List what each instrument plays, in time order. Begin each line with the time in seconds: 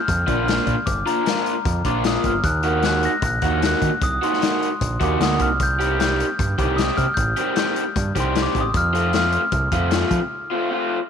0.06 picked electric bass F2, glockenspiel F6, kick, closed hi-hat
0.27 picked electric bass A#1, overdriven electric guitar F3 A#3 D4 F4, kick, closed hi-hat
0.46 overdriven electric guitar F3 A#3 D4 F4, glockenspiel F6, snare, closed hi-hat
0.66 picked electric bass A#2, kick, closed hi-hat
0.86 picked electric bass G1, glockenspiel D6, kick, closed hi-hat
1.06 overdriven electric guitar F3 A#3 D4 F4, glockenspiel A#5, closed hi-hat
1.26 overdriven electric guitar F3 A#3 D4 F4, snare, closed hi-hat
1.37 snare
1.46 closed hi-hat
1.65 picked electric bass F2, kick, closed hi-hat
1.85 picked electric bass A#1, overdriven electric guitar F3 A#3 D4 F4, glockenspiel D6, kick, closed hi-hat
2.04 overdriven electric guitar F3 A#3 D4 F4, glockenspiel D#6, snare, closed hi-hat
2.24 picked electric bass G1, glockenspiel F6, kick, closed hi-hat
2.44 picked electric bass D#2, glockenspiel F#6, kick, closed hi-hat
2.63 overdriven electric guitar D#3 A#3 D#4 F#4, closed hi-hat
2.83 overdriven electric guitar D#3 A#3 D#4 F#4, glockenspiel F#6, snare, closed hi-hat
3.03 glockenspiel A#6, closed hi-hat
3.22 picked electric bass A#1, kick, closed hi-hat
3.27 glockenspiel F#6
3.42 picked electric bass D#2, overdriven electric guitar D#3 A#3 D#4 F#4, kick, closed hi-hat
3.62 overdriven electric guitar D#3 A#3 D#4 F#4, snare, closed hi-hat
3.67 glockenspiel F#6
3.82 picked electric bass D#3, kick, closed hi-hat
4.02 picked electric bass C2, glockenspiel D#6, kick, closed hi-hat
4.22 overdriven electric guitar D#3 A#3 D#4 F#4, glockenspiel C6, closed hi-hat
4.33 snare
4.42 overdriven electric guitar D#3 A#3 D#4 F#4, snare, closed hi-hat
4.62 closed hi-hat
4.81 picked electric bass A#1, kick, closed hi-hat
5.00 picked electric bass D#2, overdriven electric guitar D#3 A#3 D#4 F#4, glockenspiel D6, kick, closed hi-hat
5.20 picked electric bass D2, overdriven electric guitar D#3 A#3 D#4 F#4, glockenspiel D#6, snare, closed hi-hat
5.39 picked electric bass C2, glockenspiel F6, kick, closed hi-hat
5.60 picked electric bass C2, glockenspiel G6, kick, closed hi-hat
5.80 overdriven electric guitar D#3 G3 C4 G4, closed hi-hat
5.99 overdriven electric guitar D#3 G3 C4 G4, glockenspiel G6, snare, closed hi-hat
6.20 closed hi-hat
6.39 picked electric bass G2, kick, closed hi-hat
6.58 picked electric bass C2, overdriven electric guitar D#3 G3 C4 G4, glockenspiel D6, kick, closed hi-hat
6.76 overdriven electric guitar D#3 G3 C4 G4, glockenspiel D#6, snare, closed hi-hat
6.97 picked electric bass C3, glockenspiel F6, kick, closed hi-hat
7.14 picked electric bass A1, glockenspiel G6, kick, closed hi-hat
7.37 overdriven electric guitar D#3 G3 C4 G4, closed hi-hat
7.56 overdriven electric guitar D#3 G3 C4 G4, glockenspiel G6, snare, closed hi-hat
7.76 closed hi-hat
7.96 picked electric bass G2, kick, closed hi-hat
8.15 picked electric bass C2, overdriven electric guitar D#3 G3 C4 G4, kick, closed hi-hat
8.20 glockenspiel C6
8.35 overdriven electric guitar D#3 G3 C4 G4, snare, closed hi-hat
8.42 glockenspiel D6
8.55 picked electric bass A1, kick, closed hi-hat
8.61 glockenspiel D#6
8.74 picked electric bass F2, glockenspiel F6, kick, closed hi-hat
8.93 overdriven electric guitar F3 A3 C4 F4, closed hi-hat
9.13 overdriven electric guitar F3 A3 C4 F4, glockenspiel F6, snare, closed hi-hat
9.24 snare
9.32 glockenspiel F6, closed hi-hat
9.52 picked electric bass C2, glockenspiel F6, kick, closed hi-hat
9.72 picked electric bass F2, overdriven electric guitar F3 A3 C4 F4, kick, closed hi-hat
9.91 overdriven electric guitar F3 A3 C4 F4, snare, closed hi-hat
10.11 picked electric bass F3, kick, closed hi-hat
10.50 overdriven electric guitar F3 A3 C4 F4
10.70 overdriven electric guitar F3 A3 C4 F4